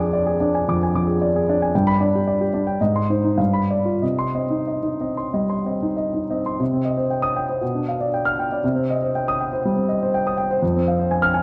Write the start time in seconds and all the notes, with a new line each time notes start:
Already playing: F2 D4 D5 G#5 D6
0.00 G#4
0.13 D5
0.26 G#4
0.40 D4 D5
0.55 G#5
0.69 F2 D6
0.83 G#5
0.95 F3 D6
1.07 G#4
1.22 D5
1.36 G#4
1.49 D4 D5
1.62 G#5
1.75 G2 G5
1.87 B5
2.00 D4 D5
2.15 G4
2.27 D5
2.41 G4
2.54 D4 D5
2.67 G5
2.81 G#2 D#5
2.96 C6
3.10 D#4 C5
3.24 D#4
3.37 G2 F5
3.53 B5
3.71 D5
3.85 F4
4.02 C3 D#5
4.19 C6
4.35 C4 D#5
4.50 D#4
4.67 D#5
4.83 D#4
5.00 C4 D#5
5.17 C6
5.34 G3 D#5
5.50 C6
5.66 C4 D#5
5.82 D#4
5.97 D#5
6.14 D#4
6.30 C4 D#5
6.46 C6
6.60 C3
6.73 C4
6.85 D#5
6.97 C5
7.10 G5
7.22 D#6
7.36 G5
7.49 C5
7.61 B2
7.75 D4
7.88 F5
8.01 D5
8.14 G5
8.25 F6
8.39 G5
8.52 D5
8.64 C3
8.76 C4
8.90 D#5
9.03 C5
9.15 G5
9.28 D#6
9.40 G5
9.53 C5
9.65 G3
9.76 C4
9.89 D#5
10.03 C5
10.14 G5
10.27 D#6
10.37 G5
10.51 C5
10.62 F2
10.76 C4
10.88 F5
10.99 C5
11.11 G#5
11.22 F6
11.34 G#5